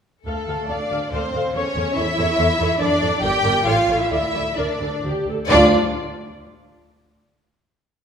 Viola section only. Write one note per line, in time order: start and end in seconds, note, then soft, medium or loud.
0.27 0.35 A4 soft
0.27 0.35 F5 soft
0.49 0.57 A4 soft
0.49 0.57 F5 soft
0.70 0.78 A4 soft
0.70 0.78 F5 soft
0.91 0.99 A4 soft
0.91 0.99 F5 soft
1.14 1.22 A4 soft
1.14 1.22 F5 soft
1.34 1.43 A4 soft
1.34 1.42 F5 soft
1.55 1.63 A4 soft
1.55 1.63 C#5 medium
1.76 1.84 A4 soft
1.76 1.84 C#5 soft
1.97 2.05 A4 medium
1.97 2.05 C#5 medium
2.19 2.27 A4 medium
2.19 2.27 C#5 medium
2.38 2.46 A4 medium
2.38 2.47 C#5 medium
2.60 2.68 A4 medium
2.60 2.68 C#5 medium
2.80 2.88 A4 medium
2.80 2.88 D5 medium
3.01 3.09 A4 medium
3.01 3.10 D5 medium
3.23 3.31 A#4 medium
3.23 3.31 D5 medium
3.44 3.52 A#4 medium
3.44 3.52 D5 medium
3.66 3.74 A4 soft
3.66 3.74 C#5 medium
3.88 3.96 A4 soft
3.88 3.96 C#5 soft
4.11 4.19 A4 soft
4.11 4.19 D5 soft
4.34 4.42 A4 soft
4.34 4.42 D5 soft
4.57 4.65 A#4 medium
4.81 4.89 A4 soft
5.05 5.27 G4 medium
5.28 5.36 A4 soft
5.51 5.75 F4 medium
5.51 5.75 D5 medium